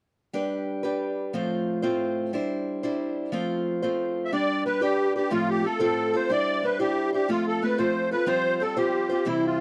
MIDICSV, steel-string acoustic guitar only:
0, 0, Header, 1, 2, 480
1, 0, Start_track
1, 0, Tempo, 330215
1, 507, Time_signature, 6, 3, 24, 8
1, 13963, End_track
2, 0, Start_track
2, 0, Title_t, "Steel-string acoustic guitar"
2, 0, Program_c, 0, 25
2, 485, Note_on_c, 0, 55, 62
2, 493, Note_on_c, 0, 62, 73
2, 504, Note_on_c, 0, 67, 62
2, 512, Note_on_c, 0, 71, 67
2, 1189, Note_off_c, 0, 71, 0
2, 1206, Note_on_c, 0, 71, 61
2, 1207, Note_off_c, 0, 67, 0
2, 1211, Note_off_c, 0, 62, 0
2, 1219, Note_off_c, 0, 55, 0
2, 1224, Note_on_c, 0, 67, 58
2, 1229, Note_on_c, 0, 62, 50
2, 1237, Note_on_c, 0, 55, 51
2, 1937, Note_on_c, 0, 45, 55
2, 1941, Note_off_c, 0, 71, 0
2, 1943, Note_off_c, 0, 55, 0
2, 1943, Note_on_c, 0, 53, 65
2, 1945, Note_off_c, 0, 62, 0
2, 1949, Note_on_c, 0, 57, 60
2, 1950, Note_off_c, 0, 67, 0
2, 1951, Note_on_c, 0, 60, 53
2, 1958, Note_on_c, 0, 65, 62
2, 1961, Note_on_c, 0, 72, 72
2, 2646, Note_off_c, 0, 72, 0
2, 2647, Note_off_c, 0, 65, 0
2, 2652, Note_on_c, 0, 72, 61
2, 2655, Note_off_c, 0, 57, 0
2, 2657, Note_off_c, 0, 53, 0
2, 2658, Note_off_c, 0, 60, 0
2, 2660, Note_off_c, 0, 45, 0
2, 2663, Note_on_c, 0, 60, 59
2, 2664, Note_on_c, 0, 65, 60
2, 2672, Note_on_c, 0, 57, 58
2, 2675, Note_on_c, 0, 53, 50
2, 2678, Note_on_c, 0, 45, 59
2, 3380, Note_off_c, 0, 57, 0
2, 3385, Note_off_c, 0, 72, 0
2, 3386, Note_on_c, 0, 55, 60
2, 3388, Note_off_c, 0, 60, 0
2, 3391, Note_off_c, 0, 65, 0
2, 3393, Note_on_c, 0, 62, 59
2, 3397, Note_off_c, 0, 53, 0
2, 3398, Note_off_c, 0, 45, 0
2, 3401, Note_on_c, 0, 64, 57
2, 3415, Note_on_c, 0, 72, 70
2, 4099, Note_off_c, 0, 72, 0
2, 4109, Note_off_c, 0, 64, 0
2, 4112, Note_off_c, 0, 55, 0
2, 4112, Note_off_c, 0, 62, 0
2, 4116, Note_on_c, 0, 72, 66
2, 4126, Note_on_c, 0, 64, 58
2, 4130, Note_on_c, 0, 62, 60
2, 4141, Note_on_c, 0, 55, 55
2, 4825, Note_on_c, 0, 53, 64
2, 4828, Note_off_c, 0, 55, 0
2, 4834, Note_on_c, 0, 57, 60
2, 4837, Note_off_c, 0, 62, 0
2, 4838, Note_off_c, 0, 72, 0
2, 4841, Note_off_c, 0, 64, 0
2, 4842, Note_on_c, 0, 60, 62
2, 4847, Note_on_c, 0, 65, 62
2, 4856, Note_on_c, 0, 72, 66
2, 5541, Note_off_c, 0, 72, 0
2, 5547, Note_off_c, 0, 65, 0
2, 5552, Note_off_c, 0, 53, 0
2, 5552, Note_off_c, 0, 60, 0
2, 5556, Note_off_c, 0, 57, 0
2, 5559, Note_on_c, 0, 72, 61
2, 5565, Note_on_c, 0, 65, 54
2, 5570, Note_on_c, 0, 60, 51
2, 5579, Note_on_c, 0, 57, 53
2, 5584, Note_on_c, 0, 53, 60
2, 6279, Note_off_c, 0, 72, 0
2, 6280, Note_off_c, 0, 57, 0
2, 6281, Note_off_c, 0, 65, 0
2, 6284, Note_off_c, 0, 60, 0
2, 6286, Note_on_c, 0, 55, 61
2, 6290, Note_on_c, 0, 62, 64
2, 6291, Note_off_c, 0, 53, 0
2, 6296, Note_on_c, 0, 67, 58
2, 6312, Note_on_c, 0, 71, 71
2, 6752, Note_off_c, 0, 55, 0
2, 6765, Note_off_c, 0, 62, 0
2, 6769, Note_on_c, 0, 55, 40
2, 6780, Note_off_c, 0, 67, 0
2, 6783, Note_on_c, 0, 62, 46
2, 6787, Note_off_c, 0, 71, 0
2, 6801, Note_on_c, 0, 67, 51
2, 6808, Note_on_c, 0, 71, 44
2, 6974, Note_off_c, 0, 71, 0
2, 6983, Note_off_c, 0, 67, 0
2, 6990, Note_off_c, 0, 62, 0
2, 6991, Note_on_c, 0, 71, 57
2, 6997, Note_off_c, 0, 55, 0
2, 7000, Note_on_c, 0, 67, 62
2, 7007, Note_on_c, 0, 62, 60
2, 7017, Note_on_c, 0, 55, 51
2, 7477, Note_off_c, 0, 71, 0
2, 7491, Note_off_c, 0, 67, 0
2, 7494, Note_on_c, 0, 71, 50
2, 7495, Note_off_c, 0, 62, 0
2, 7499, Note_off_c, 0, 55, 0
2, 7516, Note_on_c, 0, 67, 38
2, 7533, Note_on_c, 0, 62, 36
2, 7711, Note_on_c, 0, 45, 64
2, 7718, Note_on_c, 0, 57, 63
2, 7719, Note_off_c, 0, 71, 0
2, 7722, Note_on_c, 0, 53, 65
2, 7723, Note_off_c, 0, 62, 0
2, 7729, Note_on_c, 0, 60, 63
2, 7730, Note_off_c, 0, 67, 0
2, 7737, Note_on_c, 0, 65, 66
2, 7743, Note_on_c, 0, 69, 66
2, 8182, Note_off_c, 0, 57, 0
2, 8200, Note_on_c, 0, 57, 40
2, 8206, Note_off_c, 0, 45, 0
2, 8208, Note_off_c, 0, 60, 0
2, 8211, Note_off_c, 0, 53, 0
2, 8211, Note_off_c, 0, 65, 0
2, 8214, Note_on_c, 0, 60, 44
2, 8222, Note_off_c, 0, 69, 0
2, 8228, Note_on_c, 0, 65, 50
2, 8239, Note_on_c, 0, 69, 43
2, 8406, Note_off_c, 0, 69, 0
2, 8416, Note_off_c, 0, 65, 0
2, 8417, Note_off_c, 0, 60, 0
2, 8424, Note_on_c, 0, 69, 64
2, 8431, Note_off_c, 0, 57, 0
2, 8433, Note_on_c, 0, 65, 61
2, 8435, Note_on_c, 0, 60, 66
2, 8446, Note_on_c, 0, 53, 54
2, 8446, Note_on_c, 0, 57, 54
2, 8448, Note_on_c, 0, 45, 49
2, 8900, Note_off_c, 0, 69, 0
2, 8914, Note_off_c, 0, 65, 0
2, 8917, Note_on_c, 0, 69, 49
2, 8932, Note_on_c, 0, 65, 47
2, 8933, Note_off_c, 0, 45, 0
2, 8933, Note_off_c, 0, 53, 0
2, 8933, Note_off_c, 0, 57, 0
2, 8941, Note_off_c, 0, 60, 0
2, 8946, Note_on_c, 0, 60, 43
2, 8960, Note_on_c, 0, 57, 41
2, 9139, Note_off_c, 0, 57, 0
2, 9145, Note_on_c, 0, 55, 52
2, 9149, Note_off_c, 0, 69, 0
2, 9151, Note_off_c, 0, 60, 0
2, 9157, Note_off_c, 0, 65, 0
2, 9157, Note_on_c, 0, 62, 62
2, 9169, Note_on_c, 0, 64, 60
2, 9178, Note_on_c, 0, 72, 65
2, 9618, Note_off_c, 0, 55, 0
2, 9635, Note_off_c, 0, 62, 0
2, 9636, Note_on_c, 0, 55, 39
2, 9644, Note_off_c, 0, 64, 0
2, 9653, Note_on_c, 0, 62, 43
2, 9661, Note_on_c, 0, 64, 48
2, 9666, Note_off_c, 0, 72, 0
2, 9672, Note_on_c, 0, 72, 42
2, 9855, Note_off_c, 0, 72, 0
2, 9863, Note_off_c, 0, 64, 0
2, 9866, Note_off_c, 0, 62, 0
2, 9868, Note_off_c, 0, 55, 0
2, 9872, Note_on_c, 0, 72, 61
2, 9880, Note_on_c, 0, 64, 59
2, 9884, Note_on_c, 0, 62, 57
2, 9894, Note_on_c, 0, 55, 52
2, 10353, Note_off_c, 0, 72, 0
2, 10359, Note_on_c, 0, 72, 47
2, 10363, Note_off_c, 0, 64, 0
2, 10370, Note_off_c, 0, 62, 0
2, 10375, Note_off_c, 0, 55, 0
2, 10380, Note_on_c, 0, 64, 43
2, 10394, Note_on_c, 0, 62, 42
2, 10588, Note_off_c, 0, 72, 0
2, 10588, Note_on_c, 0, 53, 59
2, 10595, Note_on_c, 0, 57, 56
2, 10597, Note_off_c, 0, 62, 0
2, 10599, Note_off_c, 0, 64, 0
2, 10603, Note_on_c, 0, 60, 56
2, 10607, Note_on_c, 0, 65, 62
2, 10610, Note_on_c, 0, 69, 66
2, 11063, Note_off_c, 0, 57, 0
2, 11080, Note_on_c, 0, 57, 47
2, 11081, Note_off_c, 0, 53, 0
2, 11084, Note_off_c, 0, 65, 0
2, 11090, Note_off_c, 0, 60, 0
2, 11092, Note_off_c, 0, 69, 0
2, 11096, Note_on_c, 0, 60, 46
2, 11101, Note_on_c, 0, 65, 42
2, 11123, Note_on_c, 0, 69, 46
2, 11293, Note_off_c, 0, 69, 0
2, 11298, Note_off_c, 0, 65, 0
2, 11303, Note_off_c, 0, 60, 0
2, 11309, Note_off_c, 0, 57, 0
2, 11311, Note_on_c, 0, 69, 59
2, 11316, Note_on_c, 0, 65, 58
2, 11321, Note_on_c, 0, 60, 52
2, 11325, Note_on_c, 0, 57, 59
2, 11337, Note_on_c, 0, 53, 54
2, 11777, Note_off_c, 0, 69, 0
2, 11790, Note_off_c, 0, 65, 0
2, 11794, Note_on_c, 0, 69, 46
2, 11807, Note_on_c, 0, 65, 46
2, 11809, Note_off_c, 0, 57, 0
2, 11815, Note_off_c, 0, 53, 0
2, 11822, Note_off_c, 0, 60, 0
2, 11828, Note_on_c, 0, 60, 36
2, 12002, Note_off_c, 0, 60, 0
2, 12010, Note_off_c, 0, 65, 0
2, 12011, Note_on_c, 0, 53, 57
2, 12013, Note_on_c, 0, 55, 65
2, 12020, Note_on_c, 0, 60, 72
2, 12025, Note_off_c, 0, 69, 0
2, 12028, Note_on_c, 0, 65, 67
2, 12036, Note_on_c, 0, 72, 62
2, 12485, Note_off_c, 0, 55, 0
2, 12502, Note_on_c, 0, 55, 44
2, 12511, Note_off_c, 0, 53, 0
2, 12515, Note_off_c, 0, 60, 0
2, 12520, Note_off_c, 0, 65, 0
2, 12521, Note_on_c, 0, 60, 48
2, 12535, Note_on_c, 0, 65, 46
2, 12539, Note_off_c, 0, 72, 0
2, 12545, Note_on_c, 0, 72, 57
2, 12724, Note_off_c, 0, 72, 0
2, 12725, Note_off_c, 0, 65, 0
2, 12735, Note_off_c, 0, 60, 0
2, 12738, Note_off_c, 0, 55, 0
2, 12742, Note_on_c, 0, 65, 51
2, 12742, Note_on_c, 0, 72, 62
2, 12753, Note_on_c, 0, 55, 50
2, 12753, Note_on_c, 0, 60, 58
2, 12763, Note_on_c, 0, 53, 47
2, 13214, Note_off_c, 0, 72, 0
2, 13220, Note_on_c, 0, 72, 53
2, 13221, Note_off_c, 0, 65, 0
2, 13239, Note_on_c, 0, 65, 46
2, 13242, Note_off_c, 0, 55, 0
2, 13247, Note_off_c, 0, 53, 0
2, 13251, Note_off_c, 0, 60, 0
2, 13257, Note_on_c, 0, 60, 38
2, 13446, Note_off_c, 0, 60, 0
2, 13447, Note_on_c, 0, 48, 63
2, 13456, Note_on_c, 0, 52, 69
2, 13457, Note_off_c, 0, 72, 0
2, 13460, Note_on_c, 0, 55, 58
2, 13463, Note_off_c, 0, 65, 0
2, 13464, Note_on_c, 0, 60, 60
2, 13469, Note_on_c, 0, 64, 74
2, 13471, Note_on_c, 0, 72, 60
2, 13937, Note_off_c, 0, 55, 0
2, 13948, Note_off_c, 0, 48, 0
2, 13948, Note_off_c, 0, 60, 0
2, 13953, Note_off_c, 0, 52, 0
2, 13960, Note_off_c, 0, 64, 0
2, 13961, Note_off_c, 0, 72, 0
2, 13963, End_track
0, 0, End_of_file